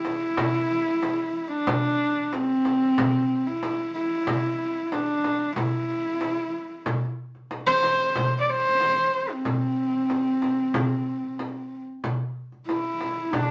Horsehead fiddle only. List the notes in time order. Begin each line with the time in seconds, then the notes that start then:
Already playing: E4
1.52 D4
2.33 C4
3.46 E4
3.94 E4
4.92 D4
5.56 E4
7.66 C5
8.41 D5
8.50 C5
9.32 C4
12.68 E4
13.33 D4